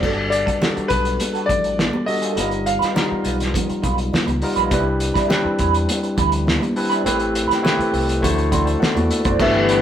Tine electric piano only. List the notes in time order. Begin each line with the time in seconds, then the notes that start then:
0.02 G3 B3 D4 F#4 A4
0.61 G3 B3 D4 F#4 A4
2.07 G3 B3 D4 F#4 A4
2.36 G3 B3 D#4 F4 A#4
2.94 G3 B3 D#4 F4 A#4
4.42 G3 B3 D#4 F4 A#4
4.71 G3 C4 D4 E4 B4
5.28 G3 C4 D4 E4 B4
6.76 G3 C4 D4 E4 B4
7.05 A3 C4 E4 G4 B4
7.63 A3 C4 E4 G4 B4
8.22 A3 D4 E4 F#4 C5
8.52 D5 B5
8.66 C5 A5
8.80 A4 F#5
8.95 F#4 D5
9.11 E5
9.25 F#4 D5
9.40 A3 D4 E4 G4 B4
9.69 A3 D4 E4 G4 B4